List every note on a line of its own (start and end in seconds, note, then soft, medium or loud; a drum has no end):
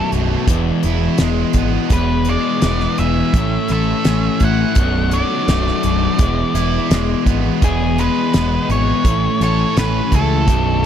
0.00 0.46 B1 medium
0.00 0.48 B1 medium
0.00 0.46 F#2 medium
0.00 0.47 B2 medium
0.00 0.47 F#3 medium
0.00 0.49 F#3 medium
0.00 0.47 A3 medium
0.00 0.49 A3 medium
0.00 0.47 D4 medium
0.12 0.35 B0 medium
0.12 0.49 B2 medium
0.12 closed hi-hat medium
0.47 0.70 E1 medium
0.47 1.89 E2 medium
0.47 1.92 E2 medium
0.47 1.89 B2 medium
0.47 1.90 E3 medium
0.47 1.90 G#3 medium
0.47 1.90 B3 medium
0.47 1.90 E4 medium
0.47 kick loud
0.47 closed hi-hat medium
0.83 1.07 E1 medium
0.83 1.92 E4 medium
0.83 closed hi-hat medium
1.18 1.43 E1 medium
1.18 1.92 G#3 medium
1.18 snare loud
1.18 closed hi-hat medium
1.53 1.77 G#1 medium
1.53 kick medium
1.53 closed hi-hat medium
1.57 1.92 B3 medium
1.90 2.36 E1 medium
1.90 3.32 E2 medium
1.90 3.35 E2 medium
1.90 3.32 B2 medium
1.90 3.33 E3 medium
1.90 3.33 G#3 medium
1.90 3.33 B3 medium
1.90 3.33 E4 medium
1.90 2.29 B4 medium
1.90 kick loud
1.90 closed hi-hat medium
2.25 3.35 G#3 medium
2.25 closed hi-hat medium
2.29 2.99 D5 medium
2.62 2.86 E1 medium
2.62 3.36 B3 medium
2.62 snare medium
2.62 closed hi-hat medium
2.80 snare soft
2.98 3.22 E1 medium
2.98 3.36 E3 medium
2.98 3.71 E5 medium
2.98 closed hi-hat medium
3.34 3.57 A1 medium
3.34 4.75 A2 medium
3.34 4.76 A2 medium
3.34 4.76 E3 medium
3.34 4.76 A3 medium
3.34 4.76 C#4 medium
3.34 4.76 E4 medium
3.34 4.77 A4 medium
3.34 kick loud
3.34 closed hi-hat medium
3.68 3.93 A1 medium
3.68 snare soft
3.68 closed hi-hat medium
3.72 4.79 A4 medium
3.72 4.44 E5 medium
4.05 4.28 A1 medium
4.05 4.78 C#4 medium
4.05 snare medium
4.05 closed hi-hat medium
4.40 4.64 A1 medium
4.40 4.78 E4 medium
4.40 kick medium
4.40 closed hi-hat medium
4.45 5.17 F#5 medium
4.75 5.22 B0 medium
4.75 6.18 B1 medium
4.75 6.19 B1 medium
4.75 6.18 F#2 medium
4.75 6.18 B2 medium
4.75 6.19 F#3 medium
4.75 6.19 A3 medium
4.75 kick loud
4.75 closed hi-hat medium
4.80 6.19 D4 medium
5.11 6.20 F#3 medium
5.11 7.24 D5 medium
5.11 closed hi-hat medium
5.48 5.71 B0 medium
5.48 6.20 A3 medium
5.48 snare medium
5.48 closed hi-hat medium
5.67 snare soft
5.83 6.07 B0 medium
5.83 6.21 B2 medium
5.83 closed hi-hat medium
6.19 6.42 E1 medium
6.19 7.60 E2 medium
6.19 7.61 E2 medium
6.19 7.61 B2 medium
6.19 7.61 E3 medium
6.19 7.61 G#3 medium
6.19 7.61 B3 medium
6.19 7.62 E4 medium
6.19 kick loud
6.19 closed hi-hat medium
6.55 6.78 E1 medium
6.55 7.62 E4 medium
6.55 snare soft
6.55 closed hi-hat medium
6.91 7.14 E1 medium
6.91 7.63 G#3 medium
6.91 snare loud
6.91 closed hi-hat medium
7.26 7.49 G#1 medium
7.26 7.63 B3 medium
7.26 kick medium
7.26 closed hi-hat medium
7.61 8.08 E1 medium
7.61 9.03 E2 medium
7.61 9.05 E2 medium
7.61 9.03 B2 medium
7.61 9.04 E3 medium
7.61 9.04 G#3 medium
7.61 9.04 B3 medium
7.61 9.04 E4 medium
7.61 8.00 G#4 medium
7.61 kick loud
7.61 closed hi-hat medium
7.98 9.05 G#3 medium
7.98 8.71 B4 medium
7.98 closed hi-hat medium
8.34 8.57 E1 medium
8.34 9.06 B3 medium
8.34 snare loud
8.34 closed hi-hat medium
8.69 8.92 G#1 medium
8.69 9.05 E3 medium
8.69 9.42 C#5 medium
8.69 closed hi-hat medium
9.04 9.27 A1 medium
9.04 10.46 A2 medium
9.04 10.48 A2 medium
9.04 10.46 E3 medium
9.04 10.46 A3 medium
9.04 10.47 C#4 medium
9.04 10.47 E4 medium
9.04 10.47 A4 medium
9.04 kick loud
9.04 closed hi-hat medium
9.41 9.64 A1 medium
9.41 10.48 A4 medium
9.41 9.76 C#5 medium
9.41 snare soft
9.41 closed hi-hat medium
9.77 10.00 A1 medium
9.77 10.48 C#4 medium
9.77 10.15 B4 medium
9.77 snare medium
9.77 closed hi-hat medium
10.12 10.49 C#2 medium
10.12 10.49 E4 medium
10.12 10.86 A4 medium
10.12 kick medium
10.12 closed hi-hat medium
10.48 10.86 B0 medium
10.48 10.86 B1 medium
10.48 10.86 F#2 medium
10.48 10.86 B2 medium
10.48 10.86 F#3 medium
10.48 10.86 A3 medium
10.48 10.86 D4 medium
10.48 kick loud
10.48 closed hi-hat medium